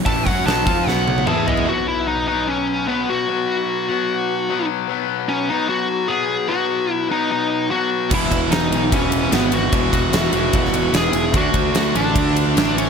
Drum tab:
CC |----------------|----------------|----------------|----------------|
RD |----------------|----------------|----------------|----------------|
HH |o-o-o-o---------|----------------|----------------|----------------|
SD |----o---o-------|----------------|----------------|----------------|
T1 |----------oo----|----------------|----------------|----------------|
T2 |------------o---|----------------|----------------|----------------|
FT |--------------oo|----------------|----------------|----------------|
BD |o-o---o---------|----------------|----------------|----------------|

CC |----------------|x---------------|----------------|----------------|
RD |----------------|--x-x-x-x-x-x-x-|x-x-x-x-x-x-x-x-|x-x-x-x-x-x-x-x-|
HH |----------------|----------------|----------------|----------------|
SD |----------------|----o-------o---|----o----o--o---|----o-------o---|
T1 |----------------|----------------|----------------|----------------|
T2 |----------------|----------------|----------------|----------------|
FT |----------------|----------------|----------------|----------------|
BD |----------------|o-o-----o-------|o-o-----o-------|o-o-----o-------|